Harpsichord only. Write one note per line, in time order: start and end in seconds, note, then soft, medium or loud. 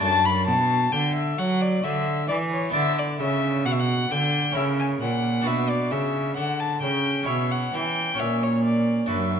0.00 0.44 F#2 soft
0.00 0.44 A3 soft
0.00 2.69 D4 soft
0.00 2.70 D5 soft
0.48 0.89 B2 medium
0.93 1.35 D3 medium
1.39 1.80 F#3 medium
1.85 2.26 D3 medium
2.29 2.71 E3 medium
2.70 4.50 B3 soft
2.70 4.50 D4 soft
2.70 4.51 D5 soft
2.75 3.16 D3 medium
3.19 3.61 C#3 medium
3.66 4.07 B2 medium
4.11 4.52 D3 medium
4.52 5.41 C#4 soft
4.52 5.42 E4 soft
4.52 5.43 A#4 soft
4.56 4.97 C#3 medium
5.02 5.42 A#2 medium
5.42 7.22 D4 soft
5.42 7.22 F#4 soft
5.42 7.23 B4 soft
5.46 5.87 B2 medium
5.91 6.33 C#3 soft
6.37 6.78 D3 medium
6.82 7.24 C#3 soft
7.23 8.13 C#4 soft
7.23 8.15 E4 soft
7.23 8.15 C#5 soft
7.28 7.69 B2 soft
7.74 8.15 E3 soft
8.14 9.05 C#4 soft
8.14 9.06 F#4 soft
8.14 9.07 C#5 soft
8.19 9.06 A#2 soft
9.06 9.40 D4 soft
9.06 9.40 F#4 soft
9.06 9.40 B4 soft
9.11 9.40 F#2 soft